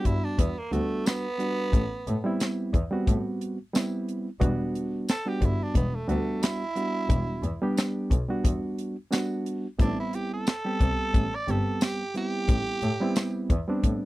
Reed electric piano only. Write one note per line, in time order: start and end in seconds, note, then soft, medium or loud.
0.00 0.55 G3 medium
0.00 0.55 B3 medium
0.00 0.55 D4 medium
0.00 0.55 F#4 medium
0.71 1.25 G3 medium
0.71 1.26 B3 medium
0.71 1.26 D4 medium
0.71 1.26 F#4 medium
1.38 1.72 G3 medium
1.38 1.72 B3 medium
1.38 1.73 D4 medium
1.38 1.73 F#4 medium
2.24 2.75 G3 medium
2.24 2.76 B3 medium
2.24 2.76 C4 medium
2.24 2.76 E4 loud
2.91 3.57 G3 loud
2.91 3.57 B3 medium
2.91 3.57 C4 medium
2.91 3.58 F#4 loud
3.73 4.28 G3 medium
3.73 4.28 B3 medium
3.73 4.28 C4 medium
3.73 4.29 E4 loud
4.40 5.06 G3 medium
4.40 5.06 B3 loud
4.40 5.07 D4 medium
4.40 5.07 F#4 loud
5.26 5.92 G3 medium
5.26 5.92 B3 medium
5.26 5.92 D4 medium
5.26 5.92 F#4 medium
6.08 6.62 G3 medium
6.08 6.62 B3 medium
6.08 6.63 D4 medium
6.08 6.63 F#4 loud
6.75 7.42 G3 medium
6.75 7.42 B3 medium
6.75 7.42 D4 medium
6.75 7.43 F#4 medium
7.62 8.13 G3 loud
7.62 8.14 B3 medium
7.62 8.14 D4 medium
7.62 8.14 G4 loud
8.28 8.95 G3 medium
8.28 8.95 B3 medium
8.28 8.95 D4 medium
8.28 8.96 F#4 loud
9.10 9.65 G3 medium
9.10 9.66 B3 medium
9.10 9.66 D4 medium
9.10 9.66 F#4 loud
9.78 10.45 G3 medium
9.78 10.45 B3 medium
9.78 10.46 C4 medium
9.78 10.46 E4 medium
10.65 11.31 G3 medium
10.65 11.31 B3 medium
10.65 11.31 C4 medium
10.65 11.31 G4 medium
11.47 12.02 G3 medium
11.47 12.02 B3 medium
11.47 12.02 C4 medium
11.47 12.03 G4 medium
12.14 12.81 G3 medium
12.14 12.81 B3 medium
12.14 12.81 C4 medium
12.14 12.82 E4 medium
13.00 13.52 G3 loud
13.00 13.53 B3 medium
13.00 13.53 C4 medium
13.00 13.53 E4 loud
13.68 14.05 G3 medium
13.68 14.05 B3 medium
13.68 14.05 C4 medium
13.68 14.05 D4 loud